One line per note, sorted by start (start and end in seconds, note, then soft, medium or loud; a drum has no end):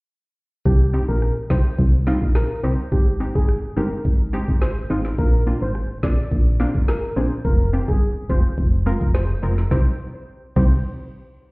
0.66 1.00 C2 loud
0.66 0.84 G4 medium
0.66 kick loud
0.93 1.06 G3 medium
0.93 1.06 C4 medium
0.93 1.06 D#4 medium
0.93 1.06 G4 medium
1.09 1.31 A#1 loud
1.09 1.17 A#4 medium
1.22 cross-stick medium
1.50 1.62 C2 medium
1.50 1.62 G3 medium
1.50 1.62 C4 medium
1.50 1.63 D#4 medium
1.50 1.63 G4 medium
1.50 1.60 C5 medium
1.50 kick loud
1.50 snare loud
1.79 2.13 C2 loud
1.79 kick loud
2.07 2.19 G3 medium
2.07 2.19 C4 medium
2.07 2.19 D#4 medium
2.07 2.19 F4 loud
2.07 snare medium
2.22 2.45 A#1 medium
2.22 kick medium
2.35 2.45 A#4 medium
2.35 cross-stick medium
2.35 snare loud
2.63 2.76 C2 medium
2.63 2.76 G3 medium
2.63 2.76 C4 medium
2.63 2.76 D#4 medium
2.63 2.76 G4 medium
2.63 2.74 C5 medium
2.92 3.27 G#1 loud
2.92 3.11 G4 medium
2.92 kick loud
3.20 3.32 G#3 medium
3.20 3.32 C4 medium
3.20 3.32 D#4 medium
3.20 3.32 G4 medium
3.35 3.58 G#1 medium
3.35 3.44 G#4 medium
3.35 kick medium
3.49 cross-stick medium
3.76 3.89 G1 medium
3.76 3.89 G#3 medium
3.76 3.89 C4 medium
3.76 3.89 D#4 medium
3.76 3.89 G4 medium
3.76 3.87 A#4 medium
4.05 4.40 G#1 loud
4.05 kick loud
4.33 4.45 G#3 medium
4.33 4.45 C4 medium
4.33 4.45 D#4 medium
4.33 4.46 G4 loud
4.48 4.82 G#1 medium
4.48 kick medium
4.62 5.03 C5 medium
4.62 cross-stick loud
4.62 snare loud
4.90 5.13 G#1 medium
4.90 5.02 G#3 medium
4.90 5.02 C4 medium
4.90 5.02 D#4 medium
4.90 5.02 F4 medium
5.05 snare medium
5.18 5.53 A#1 loud
5.18 5.37 A#4 loud
5.18 kick loud
5.46 5.59 A#3 medium
5.46 5.59 C4 medium
5.46 5.59 D4 medium
5.46 5.59 F4 medium
5.62 5.84 G#1 medium
5.62 5.71 C5 medium
5.75 cross-stick medium
6.03 6.15 A#1 medium
6.03 6.15 A#3 medium
6.03 6.15 C4 medium
6.03 6.15 D4 medium
6.03 6.16 G#4 medium
6.03 6.13 D5 medium
6.03 kick loud
6.03 snare loud
6.31 6.66 A#1 loud
6.31 kick medium
6.60 6.72 A#3 medium
6.60 6.72 C4 medium
6.60 6.72 D4 medium
6.60 6.72 F4 loud
6.60 snare medium
6.75 6.98 G#1 medium
6.75 kick medium
6.88 6.98 A#4 medium
6.88 cross-stick loud
6.88 snare loud
7.16 7.29 A#1 medium
7.16 7.28 A#3 medium
7.16 7.28 C4 medium
7.16 7.29 D4 medium
7.16 7.29 G#4 medium
7.16 7.26 C5 medium
7.45 7.80 F1 loud
7.45 7.63 A#4 medium
7.45 kick loud
7.73 7.85 G#3 medium
7.73 7.85 C4 medium
7.73 7.85 F4 medium
7.73 7.85 G4 medium
7.88 8.11 G1 loud
7.88 7.97 G#4 medium
7.88 kick loud
8.30 8.42 F1 medium
8.30 8.42 G#3 medium
8.30 8.42 C4 medium
8.30 8.42 F4 medium
8.30 8.42 G4 medium
8.30 8.40 C5 medium
8.30 kick loud
8.58 8.93 F1 loud
8.58 kick medium
8.86 8.98 G#3 medium
8.86 8.98 C4 medium
8.86 8.98 F4 medium
8.86 8.99 A#4 loud
9.01 9.35 F1 medium
9.01 kick medium
9.14 9.55 C5 medium
9.14 cross-stick loud
9.14 snare loud
9.42 9.66 F1 medium
9.42 9.55 G#3 medium
9.42 9.55 C4 medium
9.42 9.55 F4 medium
9.42 9.55 A#4 medium
9.58 snare medium
9.71 9.88 C2 loud
9.71 9.88 G3 medium
9.71 9.88 C4 medium
9.71 9.88 D#4 medium
9.71 9.88 G4 medium
9.71 9.88 C5 medium
9.71 kick loud
9.71 snare medium
10.56 10.83 C2 loud
10.56 10.82 G3 medium
10.56 10.82 C4 medium
10.56 10.83 D#4 medium
10.56 10.83 G4 loud
10.56 10.83 C5 medium
10.56 kick loud
10.56 crash medium